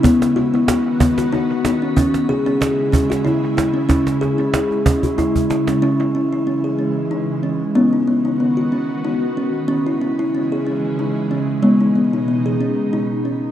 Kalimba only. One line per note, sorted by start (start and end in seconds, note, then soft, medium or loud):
0.03 0.53 B3 loud
0.36 0.53 F#4 medium
0.54 0.68 B3 medium
0.69 1.01 F#4 medium
1.00 1.18 B3 medium
1.18 1.33 F#4 medium
1.32 1.64 D#4 medium
1.65 1.82 D#4 medium
1.82 1.95 C#4 medium
1.97 2.45 C#4 loud
2.29 2.46 G#4 medium
2.46 2.61 C#4 medium
2.61 2.93 G#4 medium
2.92 3.10 C#4 medium
3.10 3.25 F#4 medium
3.25 3.56 E4 medium
3.57 3.74 E4 medium
3.74 3.88 C#4 medium
3.89 4.21 C#4 medium
4.21 4.39 G#4 medium
4.38 4.53 C#4 medium
4.54 4.86 G#4 medium
4.86 5.03 C#4 medium
5.04 5.18 F#4 medium
5.18 5.49 E4 medium
5.50 5.67 E4 medium
5.68 5.81 C#4 medium
5.82 6.14 C#4 medium
6.00 6.15 E4 medium
6.15 6.32 C#4 medium
6.33 6.47 E4 medium
6.47 6.64 C#4 medium
6.64 6.79 G#4 medium
6.79 7.11 C#4 medium
7.11 7.43 D#4 medium
7.43 7.74 C#4 medium
7.75 8.06 B3 medium
7.75 7.93 C#4 medium
7.93 8.08 D#4 medium
8.08 8.25 B3 medium
8.25 8.40 D#4 medium
8.40 8.57 B3 medium
8.57 8.72 F#4 medium
8.72 9.04 C#4 medium
9.05 9.37 D#4 medium
9.37 9.67 C#4 medium
9.68 10.00 C#4 medium
9.87 10.01 E4 medium
10.01 10.19 C#4 medium
10.19 10.34 E4 medium
10.35 10.51 C#4 medium
10.52 10.66 G#4 medium
10.67 10.99 C#4 medium
10.99 11.31 D#4 medium
11.31 11.63 C#4 medium
11.63 12.88 G#3 medium
11.63 11.80 B3 medium
11.81 11.95 D#4 medium
11.96 12.13 B3 medium
12.13 12.28 D#4 medium
12.28 12.45 B3 medium
12.46 12.60 G#4 medium
12.61 12.93 C#4 medium
12.93 13.25 D#4 medium
13.25 13.52 C#4 medium